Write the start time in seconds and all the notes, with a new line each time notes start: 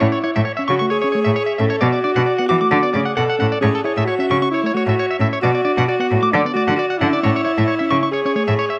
Already playing: E4
0.00 A2 C#4 C#5
0.12 C#5
0.24 E4 C#5
0.36 A2 E5
0.45 C#5
0.57 C#4 E5
0.68 C#3 F#4 C#6
0.79 A3 C#6
0.90 G#4 C#5
1.02 C#4 C#5
1.12 A3 C#5
1.24 A2 E5
1.36 C#5
1.46 E5
1.58 A2 C#4 A4 E5
1.70 C#5
1.81 B2 B3 F#4 D5
1.92 D5
2.04 D4 D5
2.16 B2 F#5
2.26 D5
2.38 B3 F#5
2.49 E3 F#4 D6
2.61 A3 D6
2.71 D3 D5
2.83 B3 D5
2.94 C#3 A3 G#4 D5
3.06 F#5
3.17 B2 A4 F#5
3.30 F#5
3.39 A2 C#4 F#5
3.52 D5
3.61 A2 C#4 G#4 C#5
3.75 A4
3.84 E4 G#4 C#5
3.97 A2 E5
4.05 F#4 C#5
4.19 C#4 E5
4.30 C#3 C#6
4.42 C#4 C#6
4.51 E4 C#5
4.64 A3 C#5
4.74 A3 F#4 C#5
4.87 A2 E5
4.99 C#5
5.11 E5
5.19 A2 C#4 E5
5.33 C#5
5.42 B2 B3 F#4 D5
5.55 D5
5.65 D4 D5
5.78 B2 F#5
5.88 F#4 D5
5.99 B3 F#5
6.11 A2
6.22 A3 D6
6.32 D3 D4 D5
6.45 B3 D5
6.54 A3 F#4 D5
6.68 D3 F#5
6.76 F#4 D5
6.90 F#5
6.98 D3 C#4 E4 F#5
7.13 D5
7.23 A2 C#4 C#5
7.36 C#5
7.45 E4 C#5
7.58 A2 E5
7.68 C#5
7.79 C#4 E5
7.91 C#3 C#6
8.03 C#4 C#6
8.12 G#4 C#5
8.25 C#4 C#5
8.35 A3 C#5
8.48 A2 E5
8.59 C#5
8.70 E5